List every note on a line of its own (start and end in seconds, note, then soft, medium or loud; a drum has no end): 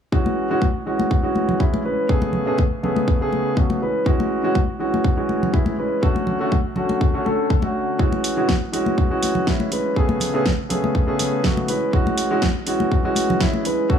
0.12 0.47 E3 medium
0.12 0.47 G#3 medium
0.12 0.47 C#4 medium
0.12 0.47 F#4 medium
0.12 kick loud
0.26 high conga medium
0.50 0.64 E3 medium
0.50 0.64 G#3 medium
0.50 0.64 C#4 medium
0.50 0.65 F#4 loud
0.62 kick loud
0.62 high conga medium
0.86 1.21 E3 medium
0.86 1.21 G#3 medium
0.86 1.21 C#4 medium
0.86 1.21 F#4 medium
0.99 high conga medium
1.11 kick loud
1.23 1.57 E3 medium
1.23 1.57 G#3 medium
1.23 1.57 C#4 medium
1.23 1.57 F#4 medium
1.35 high conga medium
1.49 low conga medium
1.59 1.81 E3 medium
1.59 1.81 G#3 medium
1.59 1.81 C#4 medium
1.59 1.81 E4 medium
1.59 kick loud
1.74 high conga medium
1.84 2.06 E3 medium
1.84 2.07 G#3 medium
1.84 2.07 C#4 medium
1.84 2.07 B4 medium
2.09 2.44 C#3 medium
2.09 2.44 A3 medium
2.09 2.44 B3 medium
2.09 2.44 G#4 medium
2.09 kick loud
2.22 high conga medium
2.33 low conga medium
2.46 2.61 C#3 medium
2.46 2.61 A3 medium
2.46 2.61 B3 medium
2.46 2.61 G#4 medium
2.58 kick loud
2.58 high conga medium
2.83 3.18 C#3 medium
2.83 3.18 A3 medium
2.83 3.18 B3 medium
2.83 3.18 G#4 medium
2.83 low conga medium
2.96 high conga medium
3.08 kick loud
3.21 3.54 C#3 medium
3.21 3.54 A3 medium
3.21 3.55 B3 medium
3.21 3.55 G#4 medium
3.32 high conga medium
3.57 3.78 C#3 medium
3.57 3.78 A3 medium
3.57 3.78 B3 medium
3.57 3.79 F#4 medium
3.57 kick loud
3.70 high conga medium
3.81 4.03 E3 medium
3.81 4.03 G#3 medium
3.81 4.04 C#4 medium
3.81 4.04 B4 medium
4.06 4.41 E3 medium
4.06 4.41 G#3 medium
4.06 4.41 C#4 medium
4.06 4.41 F#4 medium
4.06 kick loud
4.20 high conga medium
4.43 4.58 E3 medium
4.43 4.58 G#3 medium
4.43 4.58 C#4 medium
4.43 4.58 F#4 loud
4.55 kick loud
4.55 high conga medium
4.79 5.14 E3 medium
4.79 5.14 G#3 medium
4.79 5.14 C#4 medium
4.79 5.15 F#4 medium
4.94 high conga medium
5.04 kick loud
5.17 5.51 E3 medium
5.17 5.51 G#3 medium
5.17 5.51 C#4 medium
5.17 5.51 F#4 medium
5.29 high conga medium
5.43 low conga medium
5.53 5.75 E3 medium
5.53 5.75 G#3 medium
5.53 5.75 C#4 medium
5.53 5.75 E4 medium
5.53 kick loud
5.66 high conga medium
5.78 6.00 E3 medium
5.78 6.00 G#3 medium
5.78 6.00 C#4 medium
5.78 6.00 B4 medium
6.02 6.37 D3 medium
6.02 6.37 A3 medium
6.02 6.37 C#4 medium
6.02 6.38 F#4 loud
6.02 kick loud
6.16 high conga medium
6.27 low conga medium
6.40 6.54 D3 medium
6.40 6.54 A3 medium
6.40 6.55 C#4 medium
6.40 6.55 F#4 loud
6.52 kick loud
6.52 high conga medium
6.76 7.11 D3 medium
6.76 7.11 A3 medium
6.76 7.11 C#4 medium
6.76 7.11 F#4 medium
6.76 low conga medium
6.89 high conga medium
7.01 kick loud
7.14 7.23 D3 medium
7.14 7.23 A3 medium
7.14 7.24 C#4 medium
7.14 7.24 F#4 medium
7.25 7.60 D3 medium
7.25 7.60 A3 medium
7.25 7.60 C#4 medium
7.25 7.60 A4 medium
7.25 high conga medium
7.50 kick loud
7.62 7.96 D3 medium
7.62 7.96 A3 medium
7.62 7.97 C#4 medium
7.62 7.97 F#4 medium
7.62 high conga medium
7.99 8.34 E3 medium
7.99 8.34 G#3 medium
7.99 8.34 C#4 medium
7.99 8.34 F#4 medium
7.99 kick loud
8.12 high conga medium
8.24 open hi-hat loud
8.37 8.51 E3 medium
8.37 8.51 G#3 medium
8.37 8.51 C#4 medium
8.37 8.52 F#4 medium
8.49 kick loud
8.49 snare loud
8.49 high conga medium
8.72 9.07 E3 medium
8.72 9.08 G#3 medium
8.72 9.08 C#4 medium
8.72 9.08 F#4 medium
8.72 open hi-hat medium
8.86 high conga medium
8.98 kick loud
9.10 9.44 E3 medium
9.10 9.44 G#3 medium
9.10 9.44 C#4 medium
9.10 9.44 F#4 medium
9.23 open hi-hat loud
9.23 high conga medium
9.35 low conga medium
9.47 9.68 E3 medium
9.47 9.68 G#3 medium
9.47 9.68 C#4 medium
9.47 9.68 E4 medium
9.47 kick loud
9.47 snare loud
9.60 high conga medium
9.71 9.93 E3 medium
9.71 9.94 G#3 medium
9.71 9.94 C#4 medium
9.71 9.94 B4 medium
9.71 open hi-hat loud
9.96 10.31 C#3 medium
9.96 10.31 A3 medium
9.96 10.31 B3 medium
9.96 10.31 G#4 loud
9.96 kick loud
10.09 high conga medium
10.20 open hi-hat loud
10.20 low conga medium
10.34 10.48 C#3 medium
10.34 10.48 A3 medium
10.34 10.48 B3 medium
10.34 10.48 G#4 loud
10.46 kick loud
10.46 snare loud
10.46 high conga medium
10.69 11.04 C#3 medium
10.69 11.04 A3 medium
10.69 11.05 B3 medium
10.69 11.05 G#4 medium
10.69 open hi-hat medium
10.69 low conga medium
10.84 high conga medium
10.95 kick loud
11.07 11.41 C#3 medium
11.07 11.41 A3 medium
11.07 11.41 B3 medium
11.07 11.41 G#4 medium
11.19 open hi-hat loud
11.19 high conga medium
11.44 11.65 C#3 medium
11.44 11.65 A3 medium
11.44 11.65 B3 medium
11.44 11.65 F#4 medium
11.44 kick loud
11.44 snare loud
11.57 high conga medium
11.68 11.90 E3 medium
11.68 11.90 G#3 medium
11.68 11.90 C#4 medium
11.68 11.91 B4 medium
11.68 open hi-hat medium
11.93 12.27 E3 medium
11.93 12.28 G#3 medium
11.93 12.28 C#4 medium
11.93 12.28 F#4 loud
11.93 kick loud
12.07 high conga medium
12.18 open hi-hat medium
12.30 12.45 E3 medium
12.30 12.45 G#3 medium
12.30 12.45 C#4 medium
12.30 12.45 F#4 loud
12.42 kick loud
12.42 snare loud
12.42 high conga medium
12.67 13.01 E3 medium
12.67 13.01 G#3 medium
12.67 13.02 C#4 medium
12.67 13.02 F#4 medium
12.67 open hi-hat medium
12.80 high conga medium
12.92 kick loud
13.04 13.38 E3 medium
13.04 13.38 G#3 medium
13.04 13.38 C#4 medium
13.04 13.38 F#4 loud
13.16 open hi-hat medium
13.16 high conga medium
13.30 low conga medium
13.40 13.62 E3 medium
13.40 13.62 G#3 medium
13.40 13.62 C#4 medium
13.40 13.62 E4 medium
13.40 kick loud
13.40 snare loud
13.54 high conga medium
13.65 13.87 E3 medium
13.65 13.87 G#3 medium
13.65 13.87 C#4 medium
13.65 13.87 B4 medium
13.65 open hi-hat medium
13.89 13.99 D3 medium
13.89 13.99 A3 medium
13.89 13.99 C#4 medium
13.89 13.99 F#4 loud
13.89 kick loud